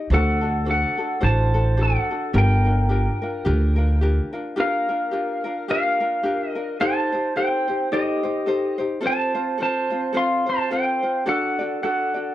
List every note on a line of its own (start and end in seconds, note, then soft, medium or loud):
0.00 0.11 D#4 soft
0.00 0.11 G4 medium
0.00 0.10 D#5 medium
0.10 0.83 D2 loud
0.10 0.42 D4 medium
0.10 0.41 F#4 medium
0.10 0.40 A4 medium
0.10 0.64 A4 medium
0.10 0.41 C5 medium
0.14 0.64 F#5 medium
0.41 0.65 D4 soft
0.41 0.65 F#4 soft
0.41 0.65 A4 soft
0.65 0.98 D4 medium
0.65 0.97 F#4 medium
0.65 0.96 A4 medium
0.65 0.97 C5 medium
0.70 1.20 A4 medium
0.70 1.26 F#5 medium
0.97 1.20 D4 soft
0.97 1.20 F#4 soft
0.97 1.20 A4 soft
1.20 1.95 A1 medium
1.20 1.54 D4 medium
1.20 1.54 F#4 medium
1.20 1.53 A4 medium
1.20 1.53 C5 medium
1.20 1.74 C5 medium
1.20 1.81 A5 medium
1.54 1.76 D4 soft
1.54 1.77 F#4 soft
1.54 1.77 A4 medium
1.77 2.09 D4 medium
1.77 2.10 F#4 medium
1.77 2.09 A4 medium
1.77 2.09 C5 medium
1.81 2.32 A4 medium
1.81 2.38 F#5 medium
2.10 2.33 D4 soft
2.10 2.34 F#4 soft
2.10 2.34 A4 soft
2.33 3.06 G1 loud
2.33 2.65 D4 medium
2.33 2.65 F4 medium
2.33 2.65 G4 medium
2.33 2.63 A#4 medium
2.33 3.98 A#4 medium
2.38 3.99 G5 medium
2.65 2.89 D4 soft
2.65 2.90 F4 soft
2.65 2.89 A#4 medium
2.89 3.22 D4 medium
2.89 3.22 F4 medium
2.89 3.21 G4 medium
2.89 3.21 A#4 medium
3.22 3.44 D4 soft
3.22 3.45 F4 soft
3.22 3.45 A#4 medium
3.45 4.18 D2 medium
3.45 3.77 D4 medium
3.45 3.77 F4 medium
3.45 3.77 G4 medium
3.45 3.75 A#4 medium
3.76 4.01 D4 soft
3.76 4.01 F4 soft
3.76 4.00 A#4 medium
4.01 4.33 D4 medium
4.01 4.32 F4 medium
4.01 4.33 G4 medium
4.01 4.31 A#4 medium
4.33 4.56 D4 soft
4.33 4.56 F4 medium
4.33 4.57 A#4 medium
4.56 4.89 D4 medium
4.56 4.89 F4 medium
4.56 4.88 G4 medium
4.56 4.88 A#4 medium
4.56 5.66 A#4 medium
4.60 5.70 F5 medium
4.89 5.11 D4 soft
4.89 5.11 F4 soft
4.89 5.12 A#4 medium
5.11 5.44 D4 medium
5.11 5.44 F4 medium
5.11 5.44 G4 medium
5.11 5.43 A#4 medium
5.44 5.68 D4 soft
5.44 5.68 F4 medium
5.44 5.68 A#4 medium
5.68 6.01 D4 medium
5.68 5.99 F4 medium
5.68 6.00 G4 medium
5.68 5.99 A#4 medium
5.68 6.77 A#4 medium
5.68 6.50 F5 medium
6.00 6.22 D4 soft
6.00 6.24 F4 soft
6.00 6.24 A#4 medium
6.23 6.56 D4 medium
6.23 6.55 F4 medium
6.23 6.56 G4 medium
6.23 6.54 A#4 medium
6.50 6.81 D#5 medium
6.55 6.80 D4 soft
6.55 6.79 F4 soft
6.55 6.80 A#4 soft
6.80 7.12 D#4 medium
6.80 7.13 G4 medium
6.80 7.12 A4 medium
6.80 7.33 C5 medium
6.80 7.11 C5 medium
6.80 7.32 A5 loud
7.12 7.35 D#4 soft
7.12 7.35 G4 soft
7.12 7.36 C5 medium
7.36 7.68 D#4 medium
7.36 7.68 G4 medium
7.36 7.68 A4 medium
7.36 7.67 C5 medium
7.36 7.89 C5 medium
7.36 7.88 G5 medium
7.68 7.91 D#4 soft
7.68 7.91 G4 soft
7.68 7.92 C5 medium
7.92 8.24 D#4 medium
7.92 8.23 G4 medium
7.92 8.77 G4 medium
7.92 8.24 A4 medium
7.92 8.22 C5 medium
7.92 8.76 D#5 medium
8.23 8.46 D#4 soft
8.23 8.46 G4 soft
8.23 8.47 C5 medium
8.46 8.79 D#4 medium
8.46 8.78 G4 medium
8.46 8.79 A4 medium
8.46 8.77 C5 medium
8.78 9.01 D#4 soft
8.78 9.01 G4 medium
8.78 9.01 C5 medium
9.01 9.34 C4 medium
9.01 9.34 F4 medium
9.01 9.34 A4 medium
9.01 9.33 C5 medium
9.06 9.57 C5 medium
9.06 9.62 A5 loud
9.35 9.58 C4 soft
9.35 9.59 F4 soft
9.35 9.59 C5 medium
9.58 9.91 C4 medium
9.58 9.90 F4 medium
9.58 9.90 A4 medium
9.58 9.89 C5 medium
9.62 10.13 C5 medium
9.62 10.18 A5 medium
9.90 10.13 C4 soft
9.90 10.13 F4 soft
9.90 10.13 C5 medium
10.13 10.46 C4 medium
10.13 10.46 F4 medium
10.13 10.46 A4 medium
10.13 10.45 C5 medium
10.17 10.46 F5 medium
10.17 10.49 C6 medium
10.46 10.70 C4 soft
10.46 10.70 F4 medium
10.46 10.70 C5 medium
10.46 10.72 A5 loud
10.71 11.03 C4 medium
10.71 11.02 F4 medium
10.71 11.03 A4 medium
10.71 11.23 C5 medium
10.71 11.01 C5 medium
10.71 11.24 G5 medium
11.02 11.26 C4 soft
11.02 11.27 F4 soft
11.02 11.26 C5 soft
11.26 11.58 D4 medium
11.26 11.59 F#4 medium
11.26 11.58 A4 medium
11.26 11.80 A4 medium
11.26 11.58 D5 medium
11.26 11.80 F#5 medium
11.59 11.82 D4 soft
11.59 11.83 F#4 soft
11.59 11.83 D5 medium
11.83 12.15 D4 medium
11.83 12.14 F#4 medium
11.83 12.15 A4 medium
11.83 12.35 A4 medium
11.83 12.13 D5 medium
11.83 12.35 F#5 medium
12.14 12.35 D4 soft
12.14 12.35 F#4 soft
12.14 12.35 D5 soft